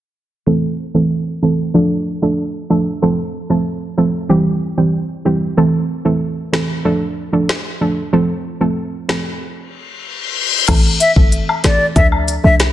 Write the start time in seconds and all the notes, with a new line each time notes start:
0.46 E3 A3 C4 A4
0.94 E3 A3 C4 A4
1.42 E3 A3 C4 A4
1.74 F3 A3 D4 A4
2.22 F3 A3 D4 A4
2.70 F3 A3 D4 A4
3.02 F3 A3 C4 A4
3.50 F3 A3 C4 A4
3.97 F3 A3 C4 A4
4.29 E3 G3 C4 G4
4.77 E3 G3 C4 G4
5.25 E3 G3 C4 G4
5.57 E3 A3 C4 A4
6.05 E3 A3 C4 A4
6.52 E3 A3 C4 A4, cross-stick, snare
6.85 F3 A3 D4 A4
7.32 F3 A3 D4 A4
7.49 cross-stick, snare
7.81 F3 A3 D4 A4
8.13 F3 A3 C4 A4
8.60 F3 A3 C4 A4
9.08 F3 A3 C4 A4, cross-stick, snare
9.41 reverse cymbal
10.68 A1 E3 A3 C4 A4, kick, closed hi-hat, crash, high woodblock
11.00 E5, closed hi-hat, cabasa
11.16 G1 E3 A3 C4 A4, kick
11.32 closed hi-hat
11.49 high woodblock
11.64 A1 E3 A3 C4 A4 D5, cross-stick, snare, closed hi-hat, cabasa
11.96 D2 F3 A3 D4 A4 E5, kick, closed hi-hat
12.12 high woodblock
12.28 closed hi-hat, cabasa
12.44 C2 F3 A3 D4 A4 E5
12.60 cross-stick, snare, closed hi-hat